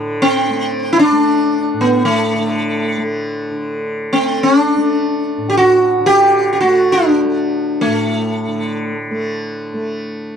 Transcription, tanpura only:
0.00 1.73 A2 medium
0.00 2.35 D3 medium
0.00 0.49 A3 medium
0.49 1.12 A3 medium
1.12 2.97 A3 medium
1.74 5.37 A2 medium
2.35 3.51 D3 medium
2.97 4.13 A3 medium
3.51 6.00 D3 soft
4.13 4.76 A3 medium
4.76 6.62 A3 medium
5.38 7.86 A2 medium
6.00 8.48 D3 medium
6.63 7.24 A3 medium
7.24 9.11 A3 medium
7.86 10.35 A2 medium
8.48 10.37 D3 medium
9.11 9.74 A3 medium
9.74 10.37 A3 medium

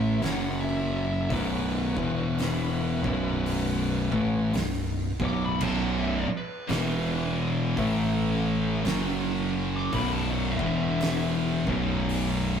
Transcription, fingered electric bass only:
0.00 0.19 A1 loud
0.23 1.27 F#1 medium
1.31 1.93 B0 loud
1.97 3.01 E1 loud
3.05 4.08 B0 medium
4.13 4.51 A1 medium
4.54 5.16 B0 medium
5.20 5.59 B0 medium
5.62 6.24 B0 loud
6.28 muted fingered electric bass stroke soft
6.70 7.73 E1 loud
7.77 8.81 A1 loud
8.86 9.89 F#1 medium
9.93 10.55 B0 loud
10.59 11.63 E1 medium
11.67 12.60 B0 medium

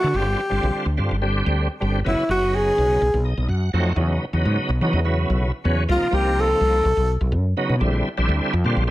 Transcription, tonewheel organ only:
0.12 0.41 D3 medium
0.12 0.41 G3 medium
0.12 0.41 C4 medium
0.12 0.41 F4 medium
0.49 0.86 D3 medium
0.49 0.87 G3 medium
0.49 0.86 C4 medium
0.49 0.87 F4 medium
0.97 1.16 D3 medium
0.97 1.16 G3 medium
0.97 1.16 C4 medium
0.97 1.16 F4 loud
1.22 1.68 D3 medium
1.22 1.68 G3 medium
1.22 1.68 C4 medium
1.22 1.68 G4 medium
1.80 2.00 D3 medium
1.80 2.00 G3 medium
1.80 2.00 C4 medium
1.80 2.00 G4 medium
2.05 2.24 C#3 medium
2.05 2.24 F#3 medium
2.05 2.24 B3 medium
2.05 2.24 E4 medium
2.30 3.02 C#3 medium
2.30 3.02 F#3 medium
2.30 3.02 B3 medium
2.30 3.02 D#4 medium
3.25 3.47 D#5 medium
3.49 3.72 F#5 medium
3.73 3.92 F#3 medium
3.73 3.93 A3 medium
3.73 3.93 C4 medium
3.73 3.93 D#4 medium
3.73 3.96 F#5 medium
3.97 4.25 C#3 medium
3.97 4.25 F#3 medium
3.97 4.25 B3 medium
3.97 4.25 D#4 medium
4.33 4.70 C#3 medium
4.33 4.71 F#3 medium
4.33 4.71 B3 medium
4.33 4.71 D#4 medium
4.81 5.00 C#3 medium
4.81 5.00 F#3 medium
4.81 5.00 B3 medium
4.81 5.01 D#4 medium
5.05 5.52 C#3 medium
5.05 5.52 F#3 medium
5.05 5.52 B3 medium
5.05 5.52 E4 medium
5.64 5.83 C#3 medium
5.64 5.84 F#3 medium
5.64 5.84 B3 medium
5.64 5.84 C#4 loud
5.89 6.08 C3 medium
5.89 6.08 F3 medium
5.89 6.08 A#3 medium
5.89 6.08 D#4 medium
6.11 6.84 C3 medium
6.11 6.84 F3 medium
6.11 6.84 A#3 medium
6.11 6.84 D#4 medium
7.57 7.76 C#3 loud
7.57 7.76 F#3 medium
7.57 7.76 B3 medium
7.57 7.76 D#4 loud
7.80 8.09 D3 medium
7.80 8.09 G3 medium
7.80 8.09 C4 medium
7.80 8.09 E4 loud
8.17 8.54 D3 medium
8.17 8.54 G3 medium
8.17 8.54 C4 medium
8.17 8.54 E4 loud
8.65 8.84 D3 medium
8.65 8.84 G3 medium
8.65 8.84 C4 medium
8.65 8.84 F4 loud
8.87 8.90 D3 medium
8.87 8.90 C4 medium

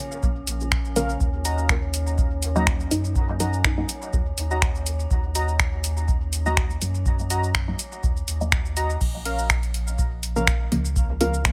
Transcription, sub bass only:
0.23 0.42 A#1 medium
0.47 1.16 A#1 medium
1.21 2.87 D#2 loud
2.91 3.85 F#2 loud
4.13 4.32 D#2 loud
4.38 5.07 D#2 medium
5.11 6.77 D#2 loud
6.82 7.75 F#2 loud
8.03 8.23 D#2 loud
8.28 8.97 D#2 medium
9.01 10.68 A#1 medium
10.72 11.52 C#2 loud

